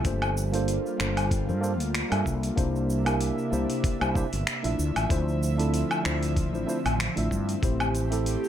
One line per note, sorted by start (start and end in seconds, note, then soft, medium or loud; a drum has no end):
0.04 0.77 G1 medium
0.04 2.55 G3 medium
0.04 0.49 A#3 medium
0.04 4.75 A#3 medium
0.04 0.49 D4 medium
0.04 2.55 F4 medium
0.04 0.50 F4 medium
0.04 0.50 A4 medium
0.04 0.50 C5 medium
0.04 kick loud
0.04 open hi-hat medium
0.04 cabasa soft
0.22 cabasa soft
0.22 low woodblock medium
0.37 cabasa medium
0.52 0.95 A#3 medium
0.52 0.96 D4 medium
0.52 0.96 F4 medium
0.52 0.96 A4 medium
0.52 0.97 C5 loud
0.52 open hi-hat soft
0.52 cabasa soft
0.68 open hi-hat medium
0.68 cabasa soft
0.86 cabasa soft
0.98 1.50 G1 medium
0.98 1.44 A#3 medium
0.98 1.44 D4 medium
0.98 1.44 F4 medium
0.98 1.45 A4 medium
0.98 1.45 C5 medium
0.98 finger snap medium
0.98 cabasa medium
1.17 open hi-hat soft
1.17 cabasa soft
1.17 low woodblock medium
1.31 kick loud
1.31 open hi-hat medium
1.31 cabasa soft
1.47 1.80 G2 medium
1.47 1.59 A#3 medium
1.47 1.59 D4 medium
1.47 1.60 F4 medium
1.47 1.60 A4 medium
1.47 1.61 C5 medium
1.47 cabasa soft
1.61 1.72 A#3 medium
1.61 1.72 D4 medium
1.61 1.72 F4 medium
1.61 1.73 A4 medium
1.61 1.73 C5 medium
1.61 cabasa medium
1.80 2.01 D2 medium
1.80 open hi-hat soft
1.80 cabasa soft
1.95 finger snap medium
1.95 open hi-hat medium
1.95 cabasa soft
2.10 2.21 G2 medium
2.10 2.53 A#3 medium
2.10 2.54 D4 medium
2.10 2.54 F4 medium
2.10 2.54 A4 medium
2.10 2.55 E5 medium
2.10 open hi-hat soft
2.10 cabasa soft
2.10 low woodblock medium
2.26 2.49 C2 loud
2.26 kick medium
2.26 cabasa medium
2.43 open hi-hat soft
2.43 cabasa soft
2.56 3.30 C2 medium
2.56 4.76 C3 medium
2.56 3.01 A#3 medium
2.56 3.02 D4 medium
2.56 4.76 D4 medium
2.56 3.02 E4 medium
2.56 3.02 G4 medium
2.56 3.03 C5 medium
2.56 7.59 E5 loud
2.56 kick loud
2.56 open hi-hat medium
2.56 cabasa soft
2.76 cabasa soft
2.90 cabasa medium
3.05 3.48 A#3 medium
3.05 3.48 D4 medium
3.05 3.49 E4 medium
3.05 3.49 G4 medium
3.05 3.49 A#4 loud
3.05 open hi-hat soft
3.05 cabasa soft
3.05 low woodblock medium
3.21 open hi-hat medium
3.21 cabasa soft
3.39 cabasa soft
3.51 3.64 C2 medium
3.51 3.96 A#3 medium
3.51 3.97 D4 medium
3.51 3.97 E4 medium
3.51 3.97 G4 medium
3.51 3.98 C5 medium
3.51 cabasa medium
3.70 open hi-hat soft
3.70 cabasa soft
3.84 kick loud
3.84 open hi-hat medium
3.84 cabasa soft
3.99 4.22 C2 loud
3.99 4.12 A#3 medium
3.99 4.12 D4 medium
3.99 4.12 E4 medium
3.99 4.13 G4 medium
3.99 4.13 C5 medium
3.99 cabasa soft
3.99 low woodblock medium
4.14 4.24 A#3 medium
4.14 4.25 D4 medium
4.14 4.25 E4 medium
4.14 4.25 G4 medium
4.14 4.26 C5 medium
4.14 kick loud
4.14 cabasa medium
4.33 4.43 G1 loud
4.33 open hi-hat soft
4.33 cabasa soft
4.47 finger snap medium
4.47 open hi-hat medium
4.47 cabasa soft
4.63 4.74 A#1 medium
4.63 5.06 A3 medium
4.63 5.06 D4 medium
4.63 5.07 E4 medium
4.63 5.07 F4 medium
4.63 5.07 E5 medium
4.63 open hi-hat medium
4.63 cabasa soft
4.78 4.91 D2 medium
4.78 7.60 D3 medium
4.78 7.60 F3 medium
4.78 8.48 C4 medium
4.78 cabasa medium
4.96 5.06 A1 medium
4.96 open hi-hat soft
4.96 cabasa soft
4.96 low woodblock medium
5.09 5.82 D2 medium
5.09 5.54 A3 medium
5.09 5.54 D4 medium
5.09 5.55 E4 medium
5.09 5.55 F4 medium
5.09 5.55 C5 medium
5.09 kick loud
5.09 open hi-hat soft
5.09 cabasa soft
5.29 cabasa soft
5.43 cabasa medium
5.57 6.01 A3 medium
5.57 6.01 D4 medium
5.57 6.01 E4 medium
5.57 6.02 F4 medium
5.57 6.02 A4 medium
5.57 open hi-hat soft
5.57 cabasa soft
5.74 open hi-hat medium
5.74 cabasa soft
5.91 cabasa soft
5.91 low woodblock medium
6.03 6.54 D2 medium
6.03 6.49 A3 medium
6.03 6.49 D4 medium
6.03 6.49 E4 medium
6.03 6.50 F4 medium
6.03 6.50 C5 medium
6.03 finger snap medium
6.03 cabasa medium
6.23 open hi-hat soft
6.23 cabasa soft
6.36 kick loud
6.36 open hi-hat medium
6.36 cabasa soft
6.52 6.64 A1 medium
6.52 6.64 A3 medium
6.52 6.65 D4 medium
6.52 6.65 E4 medium
6.52 6.65 F4 medium
6.52 6.66 C5 medium
6.52 cabasa soft
6.67 6.77 A3 medium
6.67 6.77 D4 medium
6.67 6.78 E4 medium
6.67 6.78 F4 medium
6.67 6.78 C5 loud
6.67 cabasa medium
6.85 7.06 A1 medium
6.85 open hi-hat soft
6.85 cabasa soft
6.85 low woodblock medium
7.00 finger snap medium
7.00 open hi-hat medium
7.00 cabasa soft
7.15 7.27 A1 medium
7.15 7.59 A3 medium
7.15 7.59 D4 medium
7.15 7.59 E4 medium
7.15 7.60 F4 medium
7.15 7.60 E5 medium
7.15 open hi-hat soft
7.15 cabasa soft
7.31 7.54 G2 medium
7.31 kick medium
7.31 cabasa medium
7.49 open hi-hat soft
7.49 cabasa soft
7.62 8.35 A1 medium
7.62 8.07 A3 medium
7.62 8.48 A3 medium
7.62 8.07 C4 medium
7.62 8.08 E4 medium
7.62 8.48 G4 medium
7.62 8.08 G4 medium
7.62 8.08 C5 medium
7.62 kick loud
7.62 open hi-hat soft
7.62 cabasa soft
7.80 cabasa soft
7.80 low woodblock medium
7.95 open hi-hat soft
7.95 cabasa medium
8.10 8.48 A3 medium
8.10 8.48 C4 medium
8.10 8.48 E4 medium
8.10 8.48 G4 medium
8.10 8.48 A4 loud
8.10 open hi-hat soft
8.10 cabasa soft
8.26 open hi-hat medium
8.26 cabasa soft
8.44 cabasa soft